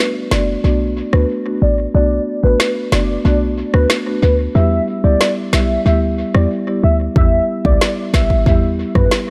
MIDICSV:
0, 0, Header, 1, 5, 480
1, 0, Start_track
1, 0, Key_signature, 2, "minor"
1, 0, Tempo, 652174
1, 1432, Time_signature, 4, 2, 24, 8
1, 6846, End_track
2, 0, Start_track
2, 0, Title_t, "Soft synth lead"
2, 0, Program_c, 0, 80
2, 0, Note_on_c, 0, 71, 83
2, 77, Note_off_c, 0, 71, 0
2, 233, Note_on_c, 0, 74, 78
2, 437, Note_off_c, 0, 74, 0
2, 471, Note_on_c, 0, 74, 89
2, 574, Note_off_c, 0, 74, 0
2, 831, Note_on_c, 0, 71, 73
2, 934, Note_off_c, 0, 71, 0
2, 1192, Note_on_c, 0, 74, 79
2, 1294, Note_off_c, 0, 74, 0
2, 1432, Note_on_c, 0, 74, 93
2, 1637, Note_off_c, 0, 74, 0
2, 1791, Note_on_c, 0, 71, 84
2, 1996, Note_off_c, 0, 71, 0
2, 2151, Note_on_c, 0, 74, 73
2, 2356, Note_off_c, 0, 74, 0
2, 2389, Note_on_c, 0, 74, 91
2, 2492, Note_off_c, 0, 74, 0
2, 2750, Note_on_c, 0, 71, 79
2, 2853, Note_off_c, 0, 71, 0
2, 3109, Note_on_c, 0, 71, 91
2, 3213, Note_off_c, 0, 71, 0
2, 3348, Note_on_c, 0, 76, 100
2, 3555, Note_off_c, 0, 76, 0
2, 3708, Note_on_c, 0, 74, 85
2, 3914, Note_off_c, 0, 74, 0
2, 4069, Note_on_c, 0, 76, 84
2, 4275, Note_off_c, 0, 76, 0
2, 4309, Note_on_c, 0, 76, 89
2, 4413, Note_off_c, 0, 76, 0
2, 4671, Note_on_c, 0, 74, 74
2, 4774, Note_off_c, 0, 74, 0
2, 5030, Note_on_c, 0, 76, 80
2, 5133, Note_off_c, 0, 76, 0
2, 5272, Note_on_c, 0, 76, 100
2, 5477, Note_off_c, 0, 76, 0
2, 5630, Note_on_c, 0, 74, 87
2, 5836, Note_off_c, 0, 74, 0
2, 5989, Note_on_c, 0, 76, 79
2, 6195, Note_off_c, 0, 76, 0
2, 6230, Note_on_c, 0, 76, 91
2, 6333, Note_off_c, 0, 76, 0
2, 6590, Note_on_c, 0, 71, 80
2, 6693, Note_off_c, 0, 71, 0
2, 6846, End_track
3, 0, Start_track
3, 0, Title_t, "Marimba"
3, 0, Program_c, 1, 12
3, 230, Note_on_c, 1, 57, 74
3, 232, Note_on_c, 1, 59, 67
3, 234, Note_on_c, 1, 62, 66
3, 235, Note_on_c, 1, 66, 81
3, 365, Note_off_c, 1, 57, 0
3, 366, Note_off_c, 1, 59, 0
3, 367, Note_off_c, 1, 62, 0
3, 368, Note_off_c, 1, 66, 0
3, 471, Note_on_c, 1, 57, 86
3, 472, Note_on_c, 1, 59, 76
3, 474, Note_on_c, 1, 62, 76
3, 476, Note_on_c, 1, 66, 96
3, 802, Note_off_c, 1, 57, 0
3, 803, Note_off_c, 1, 59, 0
3, 804, Note_off_c, 1, 62, 0
3, 805, Note_off_c, 1, 66, 0
3, 830, Note_on_c, 1, 57, 71
3, 832, Note_on_c, 1, 59, 65
3, 834, Note_on_c, 1, 62, 65
3, 835, Note_on_c, 1, 66, 81
3, 965, Note_off_c, 1, 57, 0
3, 966, Note_off_c, 1, 59, 0
3, 967, Note_off_c, 1, 62, 0
3, 967, Note_off_c, 1, 66, 0
3, 1071, Note_on_c, 1, 57, 71
3, 1072, Note_on_c, 1, 59, 65
3, 1074, Note_on_c, 1, 62, 62
3, 1076, Note_on_c, 1, 66, 78
3, 1205, Note_off_c, 1, 57, 0
3, 1206, Note_off_c, 1, 59, 0
3, 1207, Note_off_c, 1, 62, 0
3, 1208, Note_off_c, 1, 66, 0
3, 1429, Note_on_c, 1, 57, 85
3, 1431, Note_on_c, 1, 59, 79
3, 1433, Note_on_c, 1, 62, 78
3, 1434, Note_on_c, 1, 66, 98
3, 1761, Note_off_c, 1, 57, 0
3, 1762, Note_off_c, 1, 59, 0
3, 1763, Note_off_c, 1, 62, 0
3, 1764, Note_off_c, 1, 66, 0
3, 1788, Note_on_c, 1, 57, 75
3, 1790, Note_on_c, 1, 59, 67
3, 1791, Note_on_c, 1, 62, 65
3, 1793, Note_on_c, 1, 66, 82
3, 1924, Note_off_c, 1, 57, 0
3, 1925, Note_off_c, 1, 59, 0
3, 1926, Note_off_c, 1, 62, 0
3, 1926, Note_off_c, 1, 66, 0
3, 2149, Note_on_c, 1, 57, 76
3, 2150, Note_on_c, 1, 59, 68
3, 2152, Note_on_c, 1, 62, 71
3, 2153, Note_on_c, 1, 66, 81
3, 2284, Note_off_c, 1, 57, 0
3, 2285, Note_off_c, 1, 59, 0
3, 2286, Note_off_c, 1, 62, 0
3, 2286, Note_off_c, 1, 66, 0
3, 2388, Note_on_c, 1, 57, 83
3, 2390, Note_on_c, 1, 59, 79
3, 2392, Note_on_c, 1, 62, 77
3, 2393, Note_on_c, 1, 66, 96
3, 2721, Note_off_c, 1, 57, 0
3, 2722, Note_off_c, 1, 59, 0
3, 2723, Note_off_c, 1, 62, 0
3, 2723, Note_off_c, 1, 66, 0
3, 2749, Note_on_c, 1, 57, 74
3, 2750, Note_on_c, 1, 59, 65
3, 2752, Note_on_c, 1, 62, 66
3, 2753, Note_on_c, 1, 66, 80
3, 2885, Note_off_c, 1, 57, 0
3, 2885, Note_off_c, 1, 59, 0
3, 2886, Note_off_c, 1, 62, 0
3, 2887, Note_off_c, 1, 66, 0
3, 2988, Note_on_c, 1, 57, 74
3, 2989, Note_on_c, 1, 59, 65
3, 2991, Note_on_c, 1, 62, 66
3, 2993, Note_on_c, 1, 66, 78
3, 3124, Note_off_c, 1, 57, 0
3, 3125, Note_off_c, 1, 59, 0
3, 3126, Note_off_c, 1, 62, 0
3, 3126, Note_off_c, 1, 66, 0
3, 3348, Note_on_c, 1, 55, 88
3, 3350, Note_on_c, 1, 59, 79
3, 3351, Note_on_c, 1, 64, 79
3, 3353, Note_on_c, 1, 67, 98
3, 3681, Note_off_c, 1, 55, 0
3, 3682, Note_off_c, 1, 59, 0
3, 3682, Note_off_c, 1, 64, 0
3, 3683, Note_off_c, 1, 67, 0
3, 3708, Note_on_c, 1, 55, 73
3, 3710, Note_on_c, 1, 59, 69
3, 3712, Note_on_c, 1, 64, 68
3, 3713, Note_on_c, 1, 67, 82
3, 3844, Note_off_c, 1, 55, 0
3, 3845, Note_off_c, 1, 59, 0
3, 3846, Note_off_c, 1, 64, 0
3, 3846, Note_off_c, 1, 67, 0
3, 4068, Note_on_c, 1, 55, 78
3, 4070, Note_on_c, 1, 59, 69
3, 4071, Note_on_c, 1, 64, 73
3, 4073, Note_on_c, 1, 67, 83
3, 4204, Note_off_c, 1, 55, 0
3, 4205, Note_off_c, 1, 59, 0
3, 4206, Note_off_c, 1, 64, 0
3, 4206, Note_off_c, 1, 67, 0
3, 4309, Note_on_c, 1, 55, 88
3, 4311, Note_on_c, 1, 59, 76
3, 4312, Note_on_c, 1, 64, 81
3, 4313, Note_on_c, 1, 67, 100
3, 4641, Note_off_c, 1, 55, 0
3, 4642, Note_off_c, 1, 59, 0
3, 4643, Note_off_c, 1, 64, 0
3, 4643, Note_off_c, 1, 67, 0
3, 4669, Note_on_c, 1, 55, 74
3, 4670, Note_on_c, 1, 59, 66
3, 4672, Note_on_c, 1, 64, 65
3, 4673, Note_on_c, 1, 67, 80
3, 4804, Note_off_c, 1, 55, 0
3, 4805, Note_off_c, 1, 59, 0
3, 4806, Note_off_c, 1, 64, 0
3, 4806, Note_off_c, 1, 67, 0
3, 4908, Note_on_c, 1, 55, 70
3, 4910, Note_on_c, 1, 59, 68
3, 4911, Note_on_c, 1, 64, 68
3, 4912, Note_on_c, 1, 67, 82
3, 5044, Note_off_c, 1, 55, 0
3, 5045, Note_off_c, 1, 59, 0
3, 5045, Note_off_c, 1, 64, 0
3, 5046, Note_off_c, 1, 67, 0
3, 5268, Note_on_c, 1, 55, 85
3, 5269, Note_on_c, 1, 59, 79
3, 5271, Note_on_c, 1, 64, 83
3, 5273, Note_on_c, 1, 67, 96
3, 5601, Note_off_c, 1, 55, 0
3, 5601, Note_off_c, 1, 59, 0
3, 5602, Note_off_c, 1, 64, 0
3, 5603, Note_off_c, 1, 67, 0
3, 5627, Note_on_c, 1, 55, 75
3, 5629, Note_on_c, 1, 59, 66
3, 5630, Note_on_c, 1, 64, 71
3, 5631, Note_on_c, 1, 67, 84
3, 5764, Note_off_c, 1, 55, 0
3, 5765, Note_off_c, 1, 59, 0
3, 5765, Note_off_c, 1, 64, 0
3, 5766, Note_off_c, 1, 67, 0
3, 5987, Note_on_c, 1, 55, 76
3, 5988, Note_on_c, 1, 59, 73
3, 5990, Note_on_c, 1, 64, 73
3, 5992, Note_on_c, 1, 67, 83
3, 6124, Note_off_c, 1, 55, 0
3, 6124, Note_off_c, 1, 59, 0
3, 6125, Note_off_c, 1, 64, 0
3, 6126, Note_off_c, 1, 67, 0
3, 6228, Note_on_c, 1, 55, 86
3, 6229, Note_on_c, 1, 59, 80
3, 6230, Note_on_c, 1, 64, 83
3, 6232, Note_on_c, 1, 67, 96
3, 6561, Note_off_c, 1, 55, 0
3, 6561, Note_off_c, 1, 59, 0
3, 6562, Note_off_c, 1, 64, 0
3, 6563, Note_off_c, 1, 67, 0
3, 6587, Note_on_c, 1, 55, 72
3, 6588, Note_on_c, 1, 59, 69
3, 6591, Note_on_c, 1, 64, 69
3, 6592, Note_on_c, 1, 67, 78
3, 6724, Note_off_c, 1, 55, 0
3, 6724, Note_off_c, 1, 59, 0
3, 6725, Note_off_c, 1, 64, 0
3, 6726, Note_off_c, 1, 67, 0
3, 6846, End_track
4, 0, Start_track
4, 0, Title_t, "808-style bass"
4, 0, Program_c, 2, 38
4, 232, Note_on_c, 2, 30, 88
4, 418, Note_off_c, 2, 30, 0
4, 472, Note_on_c, 2, 35, 91
4, 752, Note_off_c, 2, 35, 0
4, 832, Note_on_c, 2, 38, 92
4, 925, Note_off_c, 2, 38, 0
4, 1192, Note_on_c, 2, 33, 86
4, 1378, Note_off_c, 2, 33, 0
4, 1432, Note_on_c, 2, 35, 98
4, 1618, Note_off_c, 2, 35, 0
4, 1792, Note_on_c, 2, 33, 90
4, 1885, Note_off_c, 2, 33, 0
4, 2151, Note_on_c, 2, 30, 90
4, 2338, Note_off_c, 2, 30, 0
4, 2392, Note_on_c, 2, 35, 95
4, 2672, Note_off_c, 2, 35, 0
4, 2751, Note_on_c, 2, 38, 85
4, 2845, Note_off_c, 2, 38, 0
4, 3111, Note_on_c, 2, 38, 101
4, 3298, Note_off_c, 2, 38, 0
4, 3350, Note_on_c, 2, 40, 112
4, 3537, Note_off_c, 2, 40, 0
4, 3709, Note_on_c, 2, 37, 86
4, 3803, Note_off_c, 2, 37, 0
4, 4070, Note_on_c, 2, 35, 96
4, 4257, Note_off_c, 2, 35, 0
4, 4310, Note_on_c, 2, 38, 94
4, 4591, Note_off_c, 2, 38, 0
4, 4671, Note_on_c, 2, 40, 86
4, 4764, Note_off_c, 2, 40, 0
4, 5030, Note_on_c, 2, 38, 88
4, 5217, Note_off_c, 2, 38, 0
4, 5269, Note_on_c, 2, 40, 106
4, 5457, Note_off_c, 2, 40, 0
4, 5630, Note_on_c, 2, 37, 87
4, 5724, Note_off_c, 2, 37, 0
4, 5989, Note_on_c, 2, 35, 85
4, 6177, Note_off_c, 2, 35, 0
4, 6229, Note_on_c, 2, 40, 105
4, 6510, Note_off_c, 2, 40, 0
4, 6589, Note_on_c, 2, 42, 83
4, 6683, Note_off_c, 2, 42, 0
4, 6846, End_track
5, 0, Start_track
5, 0, Title_t, "Drums"
5, 231, Note_on_c, 9, 38, 108
5, 305, Note_off_c, 9, 38, 0
5, 831, Note_on_c, 9, 37, 96
5, 905, Note_off_c, 9, 37, 0
5, 1912, Note_on_c, 9, 38, 110
5, 1986, Note_off_c, 9, 38, 0
5, 2151, Note_on_c, 9, 38, 108
5, 2225, Note_off_c, 9, 38, 0
5, 2750, Note_on_c, 9, 37, 96
5, 2824, Note_off_c, 9, 37, 0
5, 2869, Note_on_c, 9, 38, 106
5, 2942, Note_off_c, 9, 38, 0
5, 3832, Note_on_c, 9, 38, 111
5, 3906, Note_off_c, 9, 38, 0
5, 4070, Note_on_c, 9, 38, 106
5, 4144, Note_off_c, 9, 38, 0
5, 4670, Note_on_c, 9, 37, 98
5, 4744, Note_off_c, 9, 37, 0
5, 5269, Note_on_c, 9, 36, 115
5, 5343, Note_off_c, 9, 36, 0
5, 5630, Note_on_c, 9, 36, 97
5, 5703, Note_off_c, 9, 36, 0
5, 5751, Note_on_c, 9, 38, 111
5, 5825, Note_off_c, 9, 38, 0
5, 5989, Note_on_c, 9, 36, 93
5, 5990, Note_on_c, 9, 38, 104
5, 6062, Note_off_c, 9, 36, 0
5, 6064, Note_off_c, 9, 38, 0
5, 6109, Note_on_c, 9, 36, 92
5, 6183, Note_off_c, 9, 36, 0
5, 6229, Note_on_c, 9, 36, 93
5, 6302, Note_off_c, 9, 36, 0
5, 6589, Note_on_c, 9, 36, 91
5, 6589, Note_on_c, 9, 37, 94
5, 6662, Note_off_c, 9, 36, 0
5, 6663, Note_off_c, 9, 37, 0
5, 6708, Note_on_c, 9, 38, 105
5, 6782, Note_off_c, 9, 38, 0
5, 6846, End_track
0, 0, End_of_file